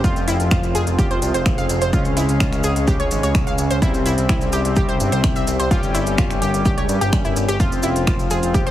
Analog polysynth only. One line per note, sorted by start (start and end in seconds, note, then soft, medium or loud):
0.04 1.19 F3 loud
0.04 1.19 C4 medium
0.04 1.19 F4 loud
1.22 1.90 F3 medium
1.22 1.90 C4 medium
1.22 1.90 F4 medium
1.93 3.08 C#3 medium
1.93 3.08 G#3 medium
1.93 3.08 C#4 loud
3.11 3.79 C#3 medium
3.11 3.79 G#3 medium
3.11 3.79 C#4 medium
3.82 4.97 C3 medium
3.82 4.97 G3 medium
3.82 4.97 C4 loud
5.00 5.68 C3 medium
5.00 5.68 G3 medium
5.00 5.68 C4 medium
5.71 6.86 G3 medium
5.71 6.86 C#4 medium
5.71 6.86 G4 loud
6.89 7.57 G3 medium
6.89 7.57 C#4 medium
6.89 7.57 G4 medium
7.60 8.71 F3 loud
7.60 8.71 C4 medium
7.60 8.71 F4 loud